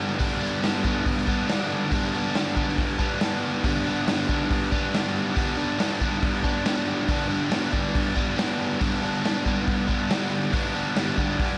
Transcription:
Already playing: overdriven electric guitar G2 D3 G3 B3 D4
0.18 overdriven electric guitar G2 D3 G3 B3 D4, kick, open hi-hat
0.40 overdriven electric guitar G3 B3 D4
0.63 overdriven electric guitar G2 D3 G3 B3 D4, snare, open hi-hat
0.84 overdriven electric guitar G3 B3 D4, kick
1.06 kick, open hi-hat
1.26 overdriven electric guitar G3 B3 D4, kick
1.47 overdriven electric guitar D3 G3 B3 D4, snare, open hi-hat
1.91 overdriven electric guitar G2 D3 G3 B3 D4, kick, open hi-hat
2.13 overdriven electric guitar G3 B3 D4
2.34 overdriven electric guitar G2 D3 G3 B3 D4, snare, open hi-hat
2.56 overdriven electric guitar G3 B3 D4, kick
2.68 snare
2.78 kick, open hi-hat
2.98 overdriven electric guitar G3 B3 D4, kick
3.20 overdriven electric guitar D3 G3 B3 D4, snare, open hi-hat
3.63 overdriven electric guitar G2 D3 G3 B3 D4, kick, open hi-hat
3.85 overdriven electric guitar G3 B3 D4
4.07 overdriven electric guitar G2 D3 G3 B3 D4, snare, open hi-hat
4.28 overdriven electric guitar G3 B3 D4, kick
4.51 kick, open hi-hat
4.71 overdriven electric guitar G3 B3 D4, kick
4.93 overdriven electric guitar D3 G3 B3 D4, snare, open hi-hat
5.34 overdriven electric guitar G2 D3 G3 B3 D4, kick, open hi-hat
5.57 overdriven electric guitar G3 B3 D4
5.79 overdriven electric guitar G2 D3 G3 B3 D4, snare, open hi-hat
6.00 overdriven electric guitar G3 B3 D4, kick
6.23 kick, open hi-hat
6.43 overdriven electric guitar G3 B3 D4, kick
6.64 overdriven electric guitar D3 G3 B3 D4, snare, open hi-hat
7.08 overdriven electric guitar G2 D3 G3 B3 D4, kick, open hi-hat
7.29 overdriven electric guitar G3 B3 D4
7.50 overdriven electric guitar G2 D3 G3 B3 D4, snare, open hi-hat
7.72 overdriven electric guitar G3 B3 D4, kick
7.95 kick, open hi-hat
8.15 overdriven electric guitar G3 B3 D4, kick
8.36 overdriven electric guitar D3 G3 B3 D4, snare, open hi-hat
8.79 overdriven electric guitar G2 D3 G3 B3 D4, kick, open hi-hat
9.01 overdriven electric guitar G3 B3 D4
9.23 overdriven electric guitar G2 D3 G3 B3 D4, snare, open hi-hat
9.45 overdriven electric guitar G3 B3 D4, kick
9.68 kick, open hi-hat
9.87 overdriven electric guitar G3 B3 D4, kick
10.09 overdriven electric guitar D3 G3 B3 D4, snare, open hi-hat
10.52 overdriven electric guitar G2 D3 G3 B3 D4, kick, open hi-hat
10.73 overdriven electric guitar G3 B3 D4
10.95 overdriven electric guitar G2 D3 G3 B3 D4, snare, open hi-hat
11.17 overdriven electric guitar G3 B3 D4, kick
11.39 kick, open hi-hat

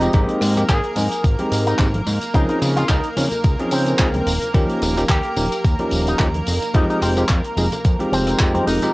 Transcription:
Already playing: analog synth pad D#4 D#5, clean electric guitar D#4
0.01 tine electric piano F3 G#3 C4 D#4 G4, closed hi-hat, tambourine, low conga
0.13 analog synth bass G#1, tine electric piano G#3 A#3 C4 D#4 G4, analog synth pad A#3 A#4, kick, closed hi-hat, tambourine, high conga
0.29 closed hi-hat
0.41 analog synth bass G#2, cross-stick, open hi-hat, tambourine, high bongo
0.55 tine electric piano G#3 A#3 C4 D#4 G4, closed hi-hat, tambourine, high conga
0.69 analog synth bass G#1, clean electric guitar G#4, kick, clap, closed hi-hat, tambourine
0.84 closed hi-hat
0.96 analog synth bass G#2, tine electric piano G#3 A#3 C4 D#4 G#4, open hi-hat, tambourine, high bongo, high conga
1.12 closed hi-hat, tambourine
1.24 analog synth bass G#1, kick, closed hi-hat, tambourine
1.39 tine electric piano G#3 A#3 C4 D#4 G4, closed hi-hat, high bongo, high conga
1.52 analog synth bass G#2, open hi-hat, tambourine
1.66 clean electric guitar D#4, closed hi-hat, tambourine
1.78 analog synth bass G#1, tine electric piano G#3 A#3 C4 D#4 G4, kick, clap, closed hi-hat, tambourine, low conga
1.94 closed hi-hat, high bongo, high conga
2.06 analog synth bass G#2, open hi-hat, tambourine, low conga
2.21 closed hi-hat, tambourine
2.34 analog synth bass C#2, tine electric piano F3 C4 C#4 D#4 G#4, clean electric guitar D#4, kick, closed hi-hat, tambourine, high bongo, high conga
2.49 clean electric guitar D#4, closed hi-hat
2.62 analog synth bass C#3, cross-stick, open hi-hat, tambourine
2.76 tine electric piano F3 C4 C#4 D#4 G#4, clean electric guitar F4, closed hi-hat, tambourine, high conga
2.89 analog synth bass C#2, clean electric guitar D#4, kick, clap, closed hi-hat, tambourine, high bongo
3.04 closed hi-hat
3.17 analog synth bass C#3, tine electric piano F3 C4 C#4 D#4 A#4, open hi-hat, tambourine, high conga
3.31 closed hi-hat, tambourine, high bongo, low conga
3.44 analog synth bass C#2, kick, closed hi-hat, tambourine
3.59 tine electric piano F3 C4 C#4 D#4 G#4, closed hi-hat, high conga
3.71 analog synth bass C#3, clean electric guitar C4, open hi-hat, tambourine
3.86 closed hi-hat, tambourine, high bongo
3.99 analog synth bass C#2, tine electric piano F3 C4 C#4 D#4 G#4, kick, clap, closed hi-hat, tambourine
4.14 closed hi-hat, high conga, low conga
4.27 analog synth bass D#1, open hi-hat, tambourine, high bongo
4.42 closed hi-hat, tambourine, low conga
4.54 analog synth bass D#2, tine electric piano F3 A#3 C#4 D#4 G4, kick, closed hi-hat, tambourine, high conga
4.70 closed hi-hat
4.82 analog synth bass D#1, cross-stick, open hi-hat, tambourine, high bongo
4.97 tine electric piano F3 A#3 C#4 D#4 G4, closed hi-hat, tambourine, high conga
5.09 analog synth bass D#2, clean electric guitar G4, kick, clap, closed hi-hat, tambourine
5.23 closed hi-hat, high bongo
5.37 analog synth bass D#1, tine electric piano F3 A#3 C#4 D#4 A#4, open hi-hat, tambourine, high conga
5.52 closed hi-hat, tambourine
5.65 analog synth bass D#2, kick, closed hi-hat, tambourine
5.79 tine electric piano F3 A#3 C#4 D#4 G4, closed hi-hat, high bongo, high conga
5.91 analog synth bass D#1, open hi-hat, tambourine
6.07 clean electric guitar D#4, closed hi-hat, tambourine
6.19 analog synth bass D#2, tine electric piano F3 A#3 C#4 D#4 G4, kick, clap, closed hi-hat, tambourine, high bongo, low conga
6.34 closed hi-hat, high conga
6.47 analog synth bass F1, open hi-hat, tambourine, low conga
6.62 closed hi-hat, tambourine
6.74 analog synth bass F2, tine electric piano F3 G#3 C4 D#4 G4, clean electric guitar D#4, kick, closed hi-hat, tambourine, high bongo, high conga
6.90 clean electric guitar D#4, closed hi-hat
7.02 analog synth bass F1, clean electric guitar C4, cross-stick, open hi-hat, tambourine
7.17 tine electric piano F3 G#3 C4 D#4 G4, closed hi-hat, tambourine, high bongo, high conga
7.28 analog synth bass F2, kick, clap, closed hi-hat, tambourine
7.44 closed hi-hat
7.57 analog synth bass F1, tine electric piano F3 G#3 C4 D#4 G#4, open hi-hat, tambourine, high conga
7.72 closed hi-hat, tambourine, high bongo, low conga
7.85 analog synth bass F2, kick, closed hi-hat, tambourine
7.99 tine electric piano F3 G#3 C4 D#4 G4, closed hi-hat, high conga
8.12 analog synth bass F1, clean electric guitar C4, open hi-hat, tambourine, high bongo
8.27 cross-stick, closed hi-hat, tambourine
8.39 analog synth bass F2, tine electric piano F3 G#3 C4 D#4 G4, kick, clap, closed hi-hat, tambourine
8.55 clean electric guitar C4, closed hi-hat, high conga, low conga
8.67 analog synth bass F1, clean electric guitar D#4, open hi-hat, tambourine, high bongo
8.82 tine electric piano F3 G#3 C4 D#4 G4, closed hi-hat, tambourine, low conga

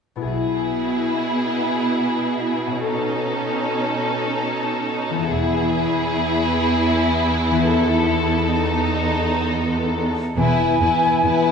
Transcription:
0.16 harp B2 B3 E4
0.21 double bass section B1, cello section B2, violin section E4, harp G#4
0.26 viola section B3, violin section G#4
2.67 harp B2
2.71 harp C#4
2.76 harp D#4
2.80 harp A4
2.85 viola section C#4, violin section D#4 A4
5.10 harp E3
5.14 harp B3
5.19 harp E4
5.23 harp G#4
5.28 double bass section E1, cello section E2, viola section B3, violin section E4 G#4
7.51 harp E3
7.55 harp B3
7.60 harp D#4
7.64 harp A4
7.70 violin section A4
8.50 violin section D#4
10.37 double bass section E1, cello section E2, harp E3, viola section B3, violin section E4 B4, flute G#5
10.59 harp B3
10.80 cello section E2, viola section B3, harp E4, violin section E4 B4
11.03 harp B4
11.23 cello section E2, viola section B3, harp E4, violin section E4 B4
11.45 harp E5

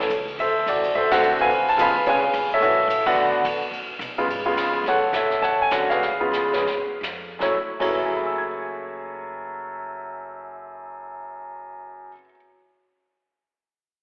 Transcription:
0.00 grand piano A4, snare
0.10 upright bass C#2, hi-hat pedal, ride
0.28 ride
0.38 upright bass D2, grand piano A4 C5 E5, ride
0.66 upright bass C2, grand piano F#4 A4 D5, hi-hat pedal, ride
0.75 upright bass A1
0.84 upright bass F#1, ride
0.95 upright bass B1, grand piano A4 C5 E5
1.11 grand piano D3 A3 C4 F#4 A4 C5 F#5, snare, ride
1.23 upright bass A1, hi-hat pedal
1.38 grand piano B4 F5 G#5, kick, ride
1.50 upright bass C#2, ride
1.66 grand piano A5, muted upright bass stroke, ride
1.77 upright bass B1, grand piano C#3 G#3 B3 F4, hi-hat pedal, ride
1.81 grand piano F5 G#5 B5
1.87 upright bass G#1
1.97 upright bass F1
2.06 upright bass C#2, grand piano C#3 G#3 B3 C#4 F5 G#5, ride
2.10 grand piano B4
2.33 upright bass F2, hi-hat pedal, ride
2.51 grand piano A4 C#5 E5, ride
2.61 upright bass F#2, grand piano E3 A3 C#4 F#4, ride
2.88 upright bass A2, hi-hat pedal, ride
3.06 grand piano D3 A3 B3 F#4 A4 D5 F#5, kick, crash
3.16 upright bass B2
3.44 upright bass A2, hi-hat pedal, ride
3.61 muted upright bass stroke, ride
3.71 upright bass C#3, ride
3.90 muted upright bass stroke
3.99 upright bass B2, hi-hat pedal, ride
4.18 grand piano C#3 G#3 B3 F4, ride
4.28 upright bass G#2, ride
4.46 grand piano C#3 G#3 B3 F4
4.56 upright bass F2, snare, hi-hat pedal, ride
4.74 kick, ride
4.84 upright bass D2, grand piano C#5, brush sweep, snare
4.88 grand piano A4 F#5
5.13 upright bass C#2, grand piano A4 C#5 E5, snare, hi-hat pedal
5.31 snare
5.42 upright bass E2, grand piano C#5 F#5 A5, brush sweep, snare
5.62 grand piano G#5
5.71 upright bass D2, grand piano D3 A3 C#4 F#4 F#5, snare, hi-hat pedal
5.88 grand piano G#4 B4 F5, muted upright bass stroke, snare
6.00 upright bass C#2, brush sweep, snare
6.20 grand piano C#3 G#3 B3 F4
6.32 upright bass F2, snare, hi-hat pedal
6.53 grand piano C#3 G#3 B3 C#4, snare
6.66 upright bass G#2, brush sweep, snare
6.87 muted upright bass stroke
7.01 upright bass F2, snare, hi-hat pedal
7.39 upright bass F#1, grand piano F#2 F#3 A3 E4 C#5, kick, snare
7.80 upright bass F#1, grand piano F#2 F#3 A3 E4 G#4 C#5, kick, crash
7.88 grand piano B4
7.97 grand piano E5
8.06 grand piano G#5
8.16 grand piano B5
8.26 grand piano E6
8.38 grand piano G#6

